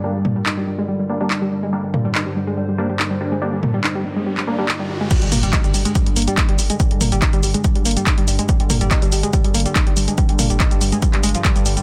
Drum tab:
CC |--------------------------------|--------------------------------|--------------------------------|x-------------------------------|
HH |--------------------------------|--------------------------------|--------------------------------|x-x-o-x-x-x-o-x-x-x-oxx-x-x-o-x-|
SH |--------------------------------|--------------------------------|--------------------------------|x---x-x-x-x-x-x-x---x-x-x---x-x-|
CP |--------x---------------x-------|--------x---------------x-------|--------x---------x-----x-------|--------x---------------x-------|
T2 |----o---------------------------|----o---------------------------|----o---------------------------|----o---------------------------|
BD |--------------------------------|--------------------------------|--------------------------------|o-------o-------o-------o-------|

CC |--------------------------------|--------------------------------|--------------------------------|
HH |x-x-o-x-x-x-o-x-x-x-oxx-x-x-o-x-|x-x-o-x-x-x-o-x-x-x-oxx-x-x-o-x-|x-x-o-x-x-x-o-x-x-x-oxx-x-x-o-x-|
SH |x---x-x-x-x-x-x-x---x-x-x---x-x-|x---x-x-x-x-x-x-x---x-x-x---x-x-|x---x-x-x-x-x-x-x---x-x-x-x-x-x-|
CP |--------x---------------x-------|--------x---------------x-------|--------x---------x-----x-------|
T2 |----o---------------------------|----o---------------------------|----o---------------------------|
BD |o-------o-------o-------o-------|o-------o-------o-------o-------|o-------o-------o-------o-------|